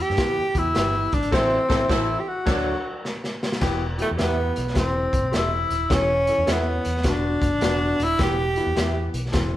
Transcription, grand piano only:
0.18 0.39 E3 medium
0.18 0.39 B3 medium
0.18 0.39 G4 medium
0.55 0.66 E3 medium
0.55 0.67 B3 medium
0.55 0.67 G4 medium
0.75 1.15 E3 medium
0.75 1.15 B3 medium
0.75 1.15 G4 medium
1.32 1.58 E3 medium
1.32 1.58 C4 loud
1.32 1.58 A4 medium
1.69 1.83 E3 medium
1.69 1.83 C4 loud
1.69 1.83 A4 loud
1.89 2.15 E3 medium
1.89 2.15 C4 medium
1.89 2.15 A4 medium
2.46 2.72 F#3 loud
2.46 2.72 D4 loud
2.46 2.72 A4 loud
3.61 3.82 E3 loud
3.61 3.82 B3 medium
3.61 3.82 G4 loud
3.98 4.09 E3 medium
3.98 4.09 B3 medium
3.98 4.10 G4 medium
4.18 4.58 E3 medium
4.18 4.58 B3 medium
4.18 4.58 G4 medium
4.74 5.14 E3 medium
4.74 5.14 C4 medium
4.74 5.15 A4 medium
5.32 5.72 E3 medium
5.32 5.72 C4 medium
5.32 5.72 A4 medium
5.90 6.11 E3 medium
5.90 6.11 C#4 medium
5.90 6.11 A4 loud
6.29 6.39 E3 medium
6.29 6.39 C#4 medium
6.29 6.39 A4 medium
6.47 6.87 E3 medium
6.47 6.87 C#4 medium
6.47 6.87 A4 medium
7.05 7.44 D3 medium
7.05 7.45 B3 medium
7.05 7.45 F#4 medium
7.61 8.01 D3 medium
7.61 8.01 B3 medium
7.61 8.01 F#4 medium
8.19 8.40 E3 loud
8.19 8.40 B3 medium
8.19 8.40 G4 loud
8.57 8.68 E3 medium
8.57 8.68 B3 medium
8.57 8.68 E4 medium
8.76 9.15 E3 medium
8.76 9.16 B3 medium
8.76 9.16 G4 medium
9.32 9.57 E3 medium
9.32 9.57 C4 medium
9.32 9.57 A4 medium

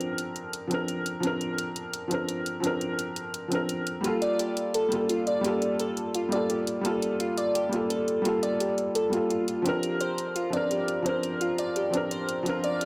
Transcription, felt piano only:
0.00 0.67 F3 medium
0.00 0.70 C4 medium
0.00 0.72 D4 medium
0.00 0.74 A#4 loud
0.67 1.19 F3 medium
0.67 1.21 C4 medium
0.72 1.22 D4 medium
0.72 1.23 A#4 medium
1.20 2.06 F3 medium
1.20 2.08 C4 medium
1.25 2.10 D4 medium
1.25 2.11 A#4 loud
2.08 2.59 F3 medium
2.08 2.61 C4 medium
2.12 2.62 D4 medium
2.12 2.63 A#4 medium
2.60 3.47 F3 medium
2.60 3.49 C4 medium
2.65 3.50 D4 medium
2.65 3.51 A#4 loud
3.48 4.00 F3 medium
3.48 4.01 C4 medium
3.52 4.03 D4 medium
3.52 4.04 A#4 medium
4.01 4.87 G3 medium
4.01 4.89 A#3 medium
4.05 4.90 F4 medium
4.05 4.91 A4 loud
4.88 5.40 G3 medium
4.88 5.42 A#3 medium
4.93 5.43 F4 medium
4.93 5.44 A4 medium
5.41 6.27 G3 medium
5.41 6.29 A#3 medium
5.45 6.31 F4 medium
5.45 6.32 A4 loud
6.29 6.80 G3 medium
6.29 6.82 A#3 medium
6.33 6.83 F4 medium
6.33 6.84 A4 medium
6.81 7.67 G3 medium
6.81 7.70 A#3 medium
6.86 7.71 F4 medium
6.86 7.72 A4 loud
7.69 8.20 G3 medium
7.69 8.22 A#3 medium
7.74 8.24 F4 medium
7.74 8.25 A4 medium
8.22 9.08 G3 medium
8.22 9.10 A#3 medium
8.26 9.11 F4 medium
8.26 9.12 A4 loud
9.10 9.62 G3 medium
9.10 9.63 A#3 medium
9.14 9.64 F4 medium
9.14 9.65 A4 medium
9.62 10.49 F3 medium
9.62 10.51 C4 medium
9.66 10.52 D4 medium
9.66 10.53 A#4 loud
10.50 11.01 F3 medium
10.50 11.03 C4 medium
10.54 11.04 D4 medium
10.54 11.05 A#4 medium
11.02 11.89 F3 medium
11.02 11.91 C4 medium
11.07 11.92 D4 medium
11.07 11.93 A#4 loud
11.90 12.41 F3 medium
11.90 12.44 C4 medium
11.95 12.45 D4 medium
11.95 12.46 A#4 medium
12.43 12.85 F3 medium
12.43 12.85 C4 medium
12.47 12.85 D4 medium
12.47 12.85 A#4 loud

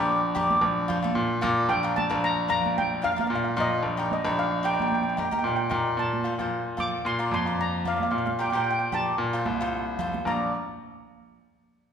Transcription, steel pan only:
1.69 1.97 G5 loud
1.96 2.08 A5 loud
2.24 2.49 A#5 loud
2.50 2.75 A#5 loud
2.78 3.02 G5 medium
3.04 3.11 F5 loud
3.12 3.20 F5 medium
3.21 3.26 F5 medium
3.27 3.34 F5 medium
3.35 3.43 F5 medium
3.44 3.50 F5 medium
3.60 4.12 D#5 loud
4.13 4.39 D#5 medium
4.39 4.65 F5 medium
4.65 4.72 G5 medium
4.74 4.80 G5 medium
4.82 4.87 G5 medium
4.88 4.93 G5 medium
4.94 5.02 G5 medium
5.03 5.08 G5 medium
5.09 5.16 G5 medium
5.17 5.24 G5 soft
5.25 5.32 G5 medium
5.34 5.38 G5 medium
5.39 5.46 G5 medium
5.47 5.54 G5 medium
5.56 5.62 G5 medium
5.99 6.81 A5 medium
6.80 7.06 D6 medium
7.06 7.18 C6 loud
7.34 7.58 C6 loud
7.61 7.87 A#5 medium
7.88 7.95 F5 medium
7.97 8.02 F5 medium
8.03 8.09 F5 medium
8.11 8.17 F5 medium
8.18 8.25 F5 medium
8.26 8.32 F5 medium
8.41 8.48 G5 medium
8.50 8.56 G5 medium
8.57 8.63 G5 medium
8.64 8.69 G5 medium
8.71 8.78 G5 medium
8.79 8.85 G5 medium
8.94 9.96 A5 medium
10.27 10.51 A#5 medium

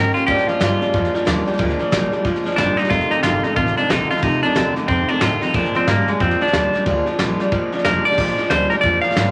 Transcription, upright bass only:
0.00 0.15 G#2 loud
0.28 0.48 A#2 medium
0.48 muted upright bass stroke medium
0.61 0.80 G2 medium
0.81 muted upright bass stroke medium
0.94 1.13 F2 medium
1.14 muted upright bass stroke medium
1.27 1.46 D#2 loud
1.59 1.79 D2 medium
1.80 muted upright bass stroke medium
1.92 2.11 A#1 loud
2.12 muted upright bass stroke medium
2.25 2.44 G#1 medium
2.58 2.77 F#1 loud
2.78 muted upright bass stroke medium
2.90 3.10 F1 medium
3.11 muted upright bass stroke medium
3.23 3.43 G1 medium
3.56 3.76 A1 medium
3.77 muted upright bass stroke medium
3.90 4.09 A#1 medium
4.10 muted upright bass stroke medium
4.23 4.42 C2 medium
4.43 muted upright bass stroke soft
4.56 4.75 D#2 medium
4.76 muted upright bass stroke soft
4.88 5.08 F2 medium
5.09 muted upright bass stroke medium
5.22 5.41 A2 loud
5.42 muted upright bass stroke medium
5.54 5.74 A#2 medium
5.75 muted upright bass stroke medium
5.87 6.07 G#2 medium
6.08 muted upright bass stroke medium
6.20 6.40 F2 medium
6.53 6.73 D#2 loud
6.74 muted upright bass stroke medium
6.86 7.06 D2 medium
7.07 muted upright bass stroke medium
7.19 7.39 A#1 medium
7.52 7.71 G#1 medium
7.84 8.04 F1 medium
8.18 8.37 A#1 medium
8.38 muted upright bass stroke medium
8.50 8.70 D2 medium
8.71 muted upright bass stroke medium
8.83 9.03 F2 medium
9.16 9.31 G#2 loud

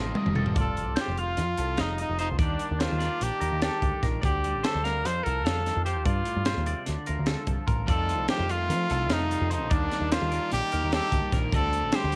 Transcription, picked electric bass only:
0.00 0.13 A1 medium
0.26 0.51 F1 loud
0.56 0.87 F1 loud
0.87 0.96 C2 medium
1.08 1.39 F1 medium
1.37 1.54 F2 medium
1.58 1.80 C2 loud
1.79 2.03 F1 medium
2.09 2.33 F1 medium
2.31 2.38 D2 medium
2.38 2.55 D#2 loud
2.71 2.87 D#2 medium
2.92 3.08 D#2 medium
3.21 3.30 A#1 medium
3.42 3.50 D#2 medium
3.52 3.68 D#2 medium
3.82 3.90 D2 loud
4.03 4.19 A#1 medium
4.23 4.54 D2 loud
4.54 4.62 A1 medium
4.75 5.05 D2 medium
5.05 5.21 F2 medium
5.26 5.46 C2 loud
5.46 5.70 F2 medium
5.76 5.98 F2 medium
5.98 6.05 D#2 medium
6.06 6.22 G2 loud
6.36 6.53 G2 medium
6.57 6.73 D#2 loud
6.88 6.96 D2 loud
7.09 7.16 D2 medium
7.19 7.35 D2 medium
7.47 7.56 C2 medium
7.68 7.84 A1 medium
7.88 8.19 F2 loud
8.19 8.27 C2 medium
8.39 8.71 F2 medium
8.70 8.86 F3 medium
8.91 9.11 C2 loud
9.11 9.35 F2 medium
9.41 9.62 F2 medium
9.62 9.70 A#1 medium
9.71 9.87 D#2 loud
10.01 10.17 D#2 medium
10.22 10.38 D#2 loud
10.53 10.60 A#1 loud
10.74 10.81 D#2 loud
10.84 10.99 D#2 medium
11.12 11.20 D2 medium
11.32 11.49 A#1 medium
11.53 11.83 D2 loud
11.83 11.91 A1 medium
12.04 12.16 D2 medium

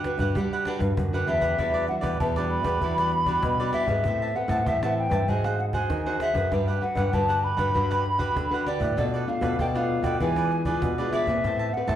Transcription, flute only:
1.27 1.85 E5 medium
1.89 1.96 F#5 medium
2.20 2.27 A5 medium
2.50 3.70 B5 loud
3.74 4.37 E5 medium
4.36 4.69 F#5 medium
4.68 4.83 E5 medium
4.84 4.97 F#5 medium
4.98 5.30 G5 medium
5.29 5.46 G#5 medium
5.45 5.59 F5 medium
5.60 5.66 F#5 medium
5.74 6.17 G#5 loud
6.21 6.53 E5 medium
6.82 7.15 F#5 medium
7.14 7.45 A5 loud
7.44 8.66 B5 loud
8.66 8.95 D5 medium
8.98 9.05 D5 medium
9.28 9.57 F5 medium
9.60 9.66 G5 medium
9.77 10.05 F5 medium
10.04 10.20 G5 medium
10.21 10.82 G#5 medium
11.12 11.75 E5 medium
11.73 11.96 F#5 loud

